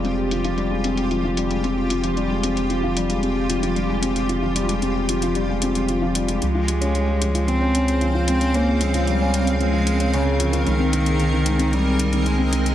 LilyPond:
<<
  \new Staff \with { instrumentName = "Ambient pad" } { \time 4/4 \key f \minor \tempo 4 = 113 << { f'1~ | f'1~ | f'1 | <c' f''>1~ |
<c' f''>1 | <c' ees'' aes''>1 | } \\ { g'1~ | g'1~ | g'1 | c''1 |
bes'1~ | bes'1 | } >> }
  \new Staff \with { instrumentName = "Cello" } { \clef bass \time 4/4 \key f \minor r1 | r1 | r1 | aes2 c'4 r8 c'8 |
bes8 aes8 g4 aes4 des4 | ees2 g4 aes4 | }
  \new Staff \with { instrumentName = "Felt piano" } { \clef bass \time 4/4 \key f \minor c'16 g'16 f16 f16 g16 aes16 c'16 g'16 f16 f16 g16 aes16 c'16 g'16 f16 f16 | g16 aes16 c'16 g'16 f16 f16 g16 aes16 c'16 g'16 f16 f16 g16 aes16 c'16 g'16 | f16 f16 g16 aes16 c'16 g'16 f16 f16 g16 aes16 c'16 g'16 f16 f16 g16 aes16 | f16 f16 aes16 des'16 des'16 aes'16 f16 f16 aes16 des'16 des'16 aes'16 f16 f16 aes16 des'16 |
des'16 aes'16 f16 f16 aes16 des'16 des'16 aes'16 f16 f16 aes16 des'16 des'16 aes'16 f16 f16 | aes16 c'16 c'16 aes'16 ees16 ees16 aes16 c'16 c'16 aes'16 ees16 ees16 aes16 c'16 c'16 aes'16 | }
  \new Staff \with { instrumentName = "Analog synth bass" } { \clef bass \time 4/4 \key f \minor f,,1~ | f,,1~ | f,,1 | des,1~ |
des,1 | c,1 | }
  \new DrumStaff \with { instrumentName = "Drums" } \drummode { \time 4/4 hh8 hh16 hh16 hh8 hh16 hh16 hh8 hh16 hh16 hh8 hh16 hh16 | hh8 hh16 hh16 hh8 hh16 hh16 hh8 hh16 hh16 hh8 hh16 hh16 | hh8 hh16 hh16 hh8 hh16 hh16 hh8 hh16 hh16 hh8 hh16 hh16 | hh8 hh16 hh16 hh8 hh16 hh16 hh8 hh16 hh16 hh8 hh16 hh16 |
hh8 hh16 hh16 hh8 hh16 hh16 hh8 hh16 hh16 hh8 hh16 hh16 | hh8 hh16 hh16 hh8 hh16 hh16 hh8 hh16 hh16 hh8 hh16 hh16 | }
>>